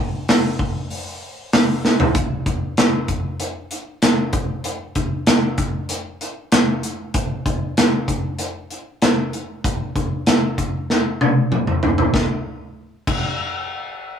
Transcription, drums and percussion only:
0.28 snare, open hi-hat
0.59 kick
0.90 open hi-hat
1.53 snare, open hi-hat
1.85 snare
2.00 floor tom
2.15 kick, closed hi-hat
2.46 kick, closed hi-hat
2.77 snare, closed hi-hat
3.08 kick, closed hi-hat
3.40 closed hi-hat
3.71 closed hi-hat
4.02 snare, closed hi-hat
4.33 kick, closed hi-hat
4.64 closed hi-hat
4.95 kick, closed hi-hat
5.27 snare, closed hi-hat
5.58 kick, closed hi-hat
5.89 closed hi-hat
6.21 closed hi-hat
6.52 snare, closed hi-hat
6.83 closed hi-hat
7.14 kick, closed hi-hat
7.46 kick, closed hi-hat
7.77 snare, closed hi-hat
8.08 kick, closed hi-hat
8.39 closed hi-hat
8.71 closed hi-hat
9.02 snare, closed hi-hat
9.33 closed hi-hat
9.64 kick, closed hi-hat
9.96 kick, closed hi-hat
10.26 snare, closed hi-hat
10.58 kick, closed hi-hat
10.90 snare
11.21 high tom
11.52 mid tom
11.67 mid tom
11.83 floor tom
11.98 floor tom
12.14 kick, snare
13.07 kick, crash

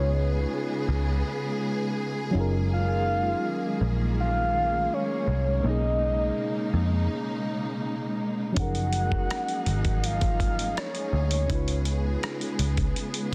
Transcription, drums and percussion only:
8.56 kick, closed hi-hat
8.75 closed hi-hat
8.93 closed hi-hat
9.12 kick
9.30 cross-stick, closed hi-hat
9.48 closed hi-hat
9.66 closed hi-hat
9.85 kick, closed hi-hat
10.04 closed hi-hat
10.21 kick, closed hi-hat
10.40 kick, closed hi-hat
10.59 closed hi-hat
10.77 cross-stick, closed hi-hat
10.95 closed hi-hat
11.31 closed hi-hat
11.50 kick, closed hi-hat
11.68 closed hi-hat
11.85 closed hi-hat
12.23 cross-stick, closed hi-hat
12.41 closed hi-hat
12.59 closed hi-hat
12.77 kick, closed hi-hat
12.96 closed hi-hat
13.14 closed hi-hat

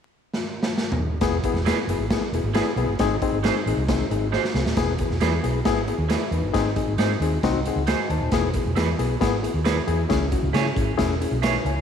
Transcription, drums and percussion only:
0.33 snare
0.63 snare
0.78 snare
0.92 floor tom
1.21 kick, snare, closed hi-hat
1.44 kick, closed hi-hat
1.55 snare
1.66 snare, closed hi-hat
1.89 closed hi-hat
2.10 kick, snare, closed hi-hat
2.34 closed hi-hat
2.55 snare, closed hi-hat
2.77 closed hi-hat
2.99 kick, snare, closed hi-hat
3.22 kick, closed hi-hat
3.44 snare, closed hi-hat
3.67 closed hi-hat
3.88 kick, snare, closed hi-hat
4.11 closed hi-hat
4.33 snare
4.45 snare
4.55 snare
4.66 snare
4.77 kick, snare, closed hi-hat
4.98 kick, closed hi-hat
5.11 snare
5.21 snare, closed hi-hat
5.44 closed hi-hat
5.65 kick, snare, closed hi-hat
5.88 closed hi-hat
6.10 snare, closed hi-hat
6.32 closed hi-hat
6.54 kick, snare, closed hi-hat
6.76 kick, closed hi-hat
6.98 snare, closed hi-hat
7.22 closed hi-hat
7.43 kick, snare, closed hi-hat
7.65 closed hi-hat
7.87 snare, closed hi-hat
8.10 closed hi-hat
8.32 kick, snare, closed hi-hat
8.54 kick, closed hi-hat
8.76 snare, closed hi-hat
8.99 closed hi-hat
9.21 kick, snare, closed hi-hat
9.44 closed hi-hat
9.65 snare, closed hi-hat
9.88 closed hi-hat
10.10 kick, snare, closed hi-hat
10.32 kick, closed hi-hat
10.54 snare, closed hi-hat
10.76 kick, closed hi-hat
10.99 kick, snare, closed hi-hat
11.22 closed hi-hat
11.43 snare, closed hi-hat
11.66 closed hi-hat

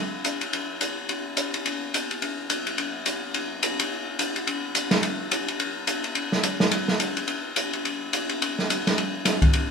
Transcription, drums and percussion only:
0.24 hi-hat pedal, ride
0.41 ride
0.53 ride
0.81 hi-hat pedal, ride
1.09 ride
1.37 hi-hat pedal, ride
1.54 ride
1.66 ride
1.94 hi-hat pedal, ride
2.11 ride
2.22 ride
2.50 hi-hat pedal, ride
2.67 ride
2.78 ride
3.06 hi-hat pedal, ride
3.34 ride
3.63 hi-hat pedal, ride
3.79 ride
4.19 hi-hat pedal, ride
4.36 ride
4.47 ride
4.75 hi-hat pedal, ride
4.91 snare, ride
5.03 ride
5.31 hi-hat pedal, ride
5.48 ride
5.60 ride
5.87 hi-hat pedal, ride
6.04 ride
6.15 ride
6.32 snare
6.43 hi-hat pedal, ride
6.60 snare
6.71 ride
6.88 snare
7.00 hi-hat pedal, ride
7.17 ride
7.28 ride
7.56 hi-hat pedal, ride
7.73 ride
7.85 ride
8.13 hi-hat pedal, ride
8.29 ride
8.42 ride
8.59 snare
8.70 hi-hat pedal, ride
8.87 snare, ride
8.98 ride
9.25 snare, hi-hat pedal, ride
9.42 kick, ride
9.53 ride

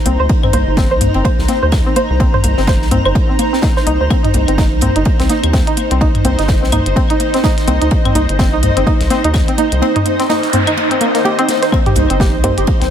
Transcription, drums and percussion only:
0.06 open hi-hat, ride, high conga
0.29 kick, ride, high conga
0.43 mid tom, claves
0.53 open hi-hat, ride, high conga
0.77 kick, snare, ride, high conga
1.01 mid tom, open hi-hat, ride, high conga
1.14 ride
1.25 kick, ride, high conga
1.39 snare
1.48 snare, open hi-hat, ride, high conga
1.72 kick, snare, ride, high conga, claves
1.96 open hi-hat, ride, high conga
2.20 kick, ride, high conga
2.34 mid tom
2.44 open hi-hat, ride, high conga
2.57 snare
2.67 kick, snare, ride, high conga
2.82 snare
2.91 mid tom, open hi-hat, ride, high conga
3.05 claves
3.15 kick, ride, high conga
3.39 open hi-hat, ride, high conga
3.53 snare
3.62 kick, snare, ride, high conga
3.76 snare
3.87 open hi-hat, ride, high conga
4.10 kick, ride, high conga, claves
4.24 closed hi-hat, mid tom
4.34 open hi-hat, ride, high conga
4.48 closed hi-hat
4.58 kick, snare, ride, high conga
4.81 mid tom, open hi-hat, ride, high conga
4.96 closed hi-hat, ride
5.05 kick, ride, high conga
5.20 snare, closed hi-hat
5.29 snare, open hi-hat, ride, high conga
5.44 closed hi-hat, claves
5.53 kick, snare, ride, high conga
5.67 closed hi-hat
5.77 open hi-hat, ride, high conga
5.91 closed hi-hat
6.01 kick, ride, high conga
6.15 closed hi-hat, mid tom
6.25 open hi-hat, ride, high conga
6.39 snare, closed hi-hat
6.48 kick, snare, ride, high conga
6.64 snare
6.72 mid tom, open hi-hat, ride, high conga, claves
6.86 closed hi-hat
6.96 kick, ride, high conga
7.10 closed hi-hat
7.20 open hi-hat, ride, high conga
7.34 snare, closed hi-hat
7.44 kick, snare, ride, high conga
7.58 snare, closed hi-hat
7.68 open hi-hat, ride, high conga
7.82 closed hi-hat
7.91 kick, ride, high conga
8.05 closed hi-hat, mid tom, claves
8.15 open hi-hat, ride, high conga
8.29 closed hi-hat
8.39 kick, snare, ride, high conga
8.63 mid tom, open hi-hat, ride, high conga
8.77 closed hi-hat, ride
8.87 kick, ride, high conga
9.00 snare, closed hi-hat
9.10 snare, open hi-hat, ride, high conga
9.24 closed hi-hat
9.34 kick, snare, ride, high conga, claves
9.48 closed hi-hat
9.58 open hi-hat, ride, high conga
9.72 closed hi-hat
9.82 ride, high conga
9.96 closed hi-hat, mid tom
10.06 open hi-hat, ride, high conga
10.20 snare, closed hi-hat
10.30 snare, ride, high conga
10.43 snare, closed hi-hat
10.53 mid tom, open hi-hat, ride, high conga
10.67 closed hi-hat, claves
10.77 ride, high conga
10.91 closed hi-hat
11.01 open hi-hat, ride, high conga
11.15 snare, closed hi-hat
11.25 ride, high conga
11.39 closed hi-hat
11.49 snare, open hi-hat, ride, high conga
11.63 snare, closed hi-hat
11.72 kick, ride, high conga, claves
11.86 closed hi-hat, mid tom
11.95 open hi-hat, ride, high conga
12.10 closed hi-hat
12.20 kick, snare, ride, high conga
12.44 mid tom, open hi-hat, ride, high conga
12.58 closed hi-hat, ride
12.67 kick, ride, high conga
12.82 snare, closed hi-hat

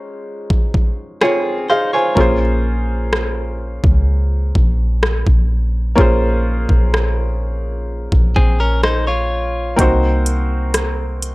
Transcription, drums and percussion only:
0.50 kick
0.74 kick
1.21 cross-stick
2.17 kick
3.13 cross-stick
3.84 kick
4.55 kick
5.03 cross-stick
5.27 kick
5.98 kick
6.69 kick
6.94 cross-stick
8.12 kick
8.36 kick
8.83 cross-stick
9.79 kick, closed hi-hat
10.26 closed hi-hat
10.74 cross-stick, closed hi-hat
11.22 closed hi-hat

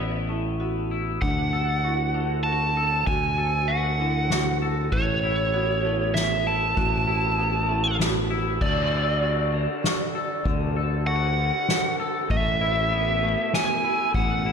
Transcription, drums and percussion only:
1.22 kick, ride
1.84 ride
2.45 ride
3.07 kick, ride
3.68 ride
4.30 snare, ride
4.92 kick
5.54 ride
6.15 snare, ride
6.77 kick, ride
7.39 ride
8.00 snare, ride
8.61 kick, crash
8.91 ride
9.23 ride
9.84 snare, ride
10.46 kick, ride
11.07 ride
11.69 snare, ride
12.30 kick, ride
12.61 ride
12.92 ride
13.54 snare, ride
14.14 kick, ride

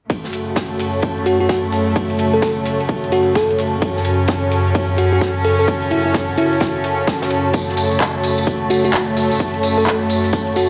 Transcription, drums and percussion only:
0.10 kick, ride
0.24 snare
0.33 open hi-hat, ride
0.56 kick, snare, ride
0.80 open hi-hat, ride
1.02 kick, ride
1.26 open hi-hat, ride
1.49 kick, snare, ride
1.72 open hi-hat
1.96 kick, ride
2.10 ride
2.19 open hi-hat, ride
2.42 kick, snare, ride
2.66 open hi-hat, ride
2.80 ride
2.89 kick, ride
3.04 ride
3.12 open hi-hat, ride
3.35 kick, snare, ride
3.50 ride
3.59 open hi-hat, ride
3.82 kick, ride
3.96 snare
4.05 open hi-hat, ride
4.28 kick, snare, ride
4.51 open hi-hat, ride
4.75 kick, ride
4.98 open hi-hat, ride
5.21 kick, snare, ride
5.45 open hi-hat
5.68 kick, ride
5.82 ride
5.91 open hi-hat, ride
6.14 kick, snare, ride
6.38 open hi-hat, ride
6.53 ride
6.60 kick, snare, ride
6.76 ride
6.84 open hi-hat, ride
7.07 kick, snare, ride
7.22 snare, ride
7.31 open hi-hat, ride
7.53 kick, closed hi-hat, ride, tambourine
7.69 snare
7.77 open hi-hat, ride, tambourine
7.92 closed hi-hat, tambourine
8.00 kick, snare, clap, closed hi-hat, ride, tambourine
8.23 open hi-hat, ride, tambourine
8.38 closed hi-hat, tambourine
8.47 kick, closed hi-hat, ride
8.70 open hi-hat, ride, tambourine
8.84 closed hi-hat, tambourine
8.93 kick, snare, clap, closed hi-hat, ride, tambourine
9.17 open hi-hat, tambourine
9.31 closed hi-hat, tambourine
9.36 closed hi-hat
9.40 kick, closed hi-hat, ride
9.54 ride
9.63 open hi-hat, ride, tambourine
9.78 closed hi-hat, tambourine
9.86 kick, snare, clap, closed hi-hat, ride
10.10 open hi-hat, ride, tambourine
10.24 closed hi-hat, ride, tambourine
10.33 kick, closed hi-hat, ride, tambourine
10.47 ride
10.56 open hi-hat, ride, tambourine

